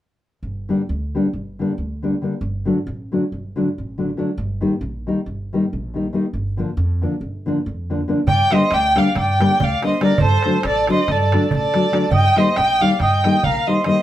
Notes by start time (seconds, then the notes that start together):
0.43 G1
0.69 D3 G3 A#3 D4
0.89 D2
1.15 D3 G3 A#3 D4
1.33 G1
1.59 D3 G3 A#3 D4
1.78 D2
2.02 D3 G3 A#3 D4
2.22 D3 G3 A#3 D4
2.41 G1
2.65 D3 F#3 A3 D4
2.87 A1
3.12 D3 F#3 A3 D4
3.32 G1
3.56 D3 F#3 A3 D4
3.78 A1
3.98 D3 F#3 A3 D4
4.17 D3 F#3 A3 D4
4.38 G1
4.61 D#3 G3 A#3 D#4
4.81 A#1
5.07 D#3 G3 A#3 D#4
5.26 G1
5.53 D#3 G3 A#3 D#4
5.73 A#1
5.94 D#3 G3 A#3 D#4
6.13 D#3 G3 A#3 D#4
6.33 G1
6.57 D3 F3 A#3 D4
6.77 F2
7.02 D3 F3 A#3 D4
7.21 G1
7.46 D3 F3 A#3 D4
7.66 F2
7.90 D3 F3 A#3 D4
8.08 D3 F3 A#3 D4
8.27 G2 D5 G5, darbuka dum
8.39 darbuka tek
8.51 D3 G3 A#3 D4 C5 D#5, darbuka tek
8.71 D2 D5 G5, darbuka tek
8.84 darbuka tek
8.95 D3 G3 A#3 D4 F5, darbuka tek
9.01 D5
9.06 darbuka tek
9.16 G2 G5, darbuka tek, darbuka dum
9.20 D5
9.40 D3 G3 A#3 D4, darbuka tek
9.60 D2 D5 F5, darbuka dum
9.72 darbuka tek
9.82 D3 G3 A#3 D4 D#5, darbuka tek
9.87 C5
9.92 darbuka tek
10.01 D3 G3 A#3 D4 D5, darbuka tek
10.05 A#4
10.18 G2 A4, darbuka dum
10.22 C5
10.31 darbuka tek
10.43 D3 F#3 A3 D4, darbuka tek
10.63 A1 A4, darbuka tek
10.67 D5
10.76 darbuka tek
10.87 D3 F#3 A3 D4, darbuka tek
10.92 C5 D#5
10.98 darbuka tek
11.08 G2 A4 D5, darbuka tek, darbuka dum
11.32 D3 F#3 A3 D4, darbuka tek
11.51 A1 A4, darbuka dum
11.57 D5
11.63 darbuka tek
11.74 D3 F#3 A3 D4, darbuka tek
11.83 darbuka tek
11.92 D3 F#3 A3 D4, darbuka tek
12.11 G2 D#5 G5, darbuka dum
12.24 darbuka tek
12.36 D#3 G3 A#3 D#4 C5 D#5, darbuka tek
12.56 A#1 D#5 G5, darbuka tek
12.69 darbuka tek
12.80 D#3 G3 A#3 D#4 D5 F5
12.90 darbuka tek
13.00 G2 D#5 G5, darbuka tek, darbuka dum
13.24 D#3 G3 A#3 D#4, darbuka tek
13.43 A#1 A#4 F5, darbuka dum
13.55 darbuka tek
13.67 D#3 G3 A#3 D#4 C5 D#5
13.76 darbuka tek
13.84 D#3 G3 A#3 D#4 C5 D#5, darbuka tek